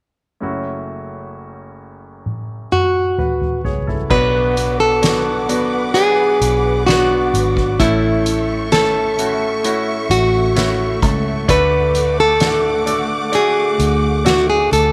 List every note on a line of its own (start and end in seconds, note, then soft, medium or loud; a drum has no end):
0.40 4.06 F#1 soft
0.40 4.07 F#2 soft
0.40 4.06 A3 soft
0.40 4.06 C#4 soft
0.40 3.14 E4 soft
0.40 3.15 F#4 soft
2.26 high tom soft
2.72 3.60 F#4 medium
2.72 mid tom soft
3.18 3.62 F#4 soft
3.18 3.62 B4 soft
3.18 mid tom soft
3.41 mid tom soft
3.64 3.87 G#4 soft
3.64 3.86 C#5 soft
3.64 floor tom medium
3.87 4.32 E4 soft
3.87 4.31 A4 soft
3.87 floor tom medium
4.10 6.37 B1 medium
4.10 5.45 B2 medium
4.10 7.79 B2 medium
4.10 4.98 F#3 medium
4.10 4.98 B3 medium
4.10 4.98 D4 medium
4.10 5.01 F#4 medium
4.10 4.98 F#4 medium
4.10 4.80 B4 medium
4.10 7.76 B4 medium
4.10 7.76 F#5 medium
4.10 7.76 D6 medium
4.10 kick medium
4.10 crash medium
4.57 5.48 B3 medium
4.57 closed hi-hat medium
4.80 5.94 A4 medium
5.02 5.46 F#3 medium
5.02 5.46 B3 medium
5.02 5.46 D4 medium
5.02 7.33 F#4 medium
5.02 5.46 F#4 medium
5.02 snare loud
5.02 closed hi-hat medium
5.49 5.92 F#3 medium
5.49 5.93 B3 medium
5.49 6.41 B3 medium
5.49 5.93 D4 medium
5.49 5.93 F#4 medium
5.49 closed hi-hat medium
5.94 6.82 F#3 medium
5.94 6.83 B3 medium
5.94 6.86 D4 medium
5.94 6.83 D4 medium
5.94 6.86 G#4 medium
5.94 6.83 G#4 medium
5.94 closed hi-hat medium
6.41 7.29 B1 medium
6.41 7.89 B3 medium
6.41 closed hi-hat medium
6.87 7.75 F#3 medium
6.87 7.75 B3 medium
6.87 7.89 D4 medium
6.87 7.75 D4 medium
6.87 7.82 F#4 medium
6.87 7.76 F#4 medium
6.87 snare medium
6.87 closed hi-hat medium
7.33 7.76 G#1 medium
7.33 7.80 F#4 medium
7.33 closed hi-hat medium
7.57 kick medium
7.79 10.06 A1 medium
7.79 9.14 A2 medium
7.79 11.49 A2 medium
7.79 14.92 A3 medium
7.79 8.67 A3 medium
7.79 8.67 C#4 medium
7.79 8.68 E4 medium
7.79 8.72 A4 medium
7.79 8.68 A4 loud
7.79 11.45 E5 medium
7.79 11.45 C#6 medium
7.79 kick medium
7.79 closed hi-hat loud
8.26 9.17 C#4 medium
8.26 closed hi-hat medium
8.72 9.16 A3 medium
8.72 9.16 C#4 medium
8.72 9.16 E4 medium
8.72 11.03 A4 medium
8.72 10.10 A4 medium
8.72 9.16 A4 medium
8.72 snare loud
8.72 closed hi-hat medium
9.18 9.62 A3 medium
9.18 10.10 C#4 soft
9.18 9.62 C#4 soft
9.18 9.62 E4 medium
9.18 9.63 F#4 medium
9.18 closed hi-hat medium
9.64 10.52 A3 medium
9.64 10.52 C#4 medium
9.64 10.52 E4 medium
9.64 10.56 E4 medium
9.64 10.52 F#4 medium
9.64 closed hi-hat medium
10.10 11.02 A1 medium
10.10 11.58 C#4 soft
10.10 10.99 F#4 medium
10.10 closed hi-hat medium
10.56 11.44 A3 medium
10.56 11.44 C#4 medium
10.56 11.44 E4 medium
10.56 11.58 E4 medium
10.56 11.44 F#4 medium
10.56 snare medium
10.56 closed hi-hat medium
11.02 11.45 C#2 medium
11.02 11.49 A4 medium
11.02 kick medium
11.02 closed hi-hat medium
11.48 13.75 D2 medium
11.48 12.83 D3 medium
11.48 14.92 D3 medium
11.48 12.36 A3 medium
11.48 12.36 D4 medium
11.48 12.36 F#4 medium
11.48 12.37 A4 medium
11.48 12.42 A4 medium
11.48 12.20 B4 loud
11.48 14.92 F#5 medium
11.48 14.92 D6 medium
11.48 kick medium
11.48 closed hi-hat loud
11.95 12.86 A3 medium
11.95 closed hi-hat medium
12.20 13.35 A4 medium
12.40 12.84 A3 medium
12.40 12.85 D4 medium
12.40 12.85 F#4 medium
12.40 12.85 A4 medium
12.40 snare loud
12.40 closed hi-hat medium
12.86 13.30 A3 medium
12.86 13.78 A3 soft
12.86 13.30 D4 medium
12.86 13.31 F#4 medium
12.86 13.31 A4 medium
12.86 closed hi-hat medium
13.32 14.20 A3 medium
13.32 14.20 D4 medium
13.32 14.21 F#4 medium
13.32 14.25 F#4 medium
13.32 14.26 G#4 medium
13.32 closed hi-hat medium
13.79 14.68 D2 medium
13.79 14.92 A3 medium
13.79 closed hi-hat medium
14.24 14.92 A3 medium
14.24 14.92 D4 medium
14.24 14.92 F#4 medium
14.24 14.49 F#4 medium
14.24 14.92 A4 medium
14.24 snare medium
14.24 closed hi-hat medium
14.50 14.73 G#4 medium
14.71 14.92 D2 medium
14.71 14.92 A4 medium
14.71 closed hi-hat medium